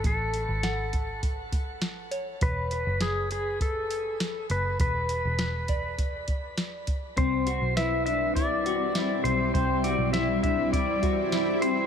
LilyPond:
<<
  \new Staff \with { instrumentName = "Pedal steel guitar" } { \time 4/4 \key e \mixolydian \tempo 4 = 101 a'2 r2 | b'4 gis'8 gis'8 a'4. b'8 | b'2 r2 | c''4 e''8 e''8 d''4. c''8 |
c''8 d''8 e''8 e''8 d''4. c''8 | }
  \new Staff \with { instrumentName = "Synth bell" } { \time 4/4 \key e \mixolydian <b'' fis'''>4 fis''2~ fis''8 cis''8~ | cis''8 b'2. r8 | r4. d''2~ d''8~ | d''8 r8 b'2. |
r2 r8 fis'8 e'16 g'8. | }
  \new Staff \with { instrumentName = "Clean electric guitar" } { \time 4/4 \key e \mixolydian r1 | r1 | r1 | c'8 fis'8 e'8 d'8 e'8 fis'8 e'8 c'8 |
c'8 fis'8 e'8 d'8 e'8 fis'8 e'8 c'8 | }
  \new Staff \with { instrumentName = "Ambient pad" } { \time 4/4 \key e \mixolydian r1 | r1 | r1 | <g c' e'>1~ |
<g c' e'>1 | }
  \new Staff \with { instrumentName = "Picked electric bass" } { \clef bass \time 4/4 \key e \mixolydian a,,8. gis,,2.~ gis,,16 | e,,8. fis,,2~ fis,,8. fis,,8 | e,,8. e,,2.~ e,,16 | c,8. b,,2~ b,,8. b,,8 |
c,8. b,,2.~ b,,16 | }
  \new DrumStaff \with { instrumentName = "Drums" } \drummode { \time 4/4 <hh bd>8 hh8 <hh sn>8 <hh bd>8 <hh bd>8 <hh bd>8 <hh sn>8 hh8 | <hh bd>8 hh8 <hh sn>8 hh8 <hh bd>8 hh8 <hh sn>8 hh8 | <hh bd>8 hh8 <hh sn>8 <hh bd>8 <hh bd>8 <hh bd>8 <hh sn>8 <hh bd>8 | <hh bd>8 hh8 <hh sn>8 hh8 <hh bd>8 hh8 <hh sn>8 hh8 |
<hh bd>8 hh8 <hh sn>8 <hh bd>8 <hh bd>8 <hh bd>8 <hh sn>8 hh8 | }
>>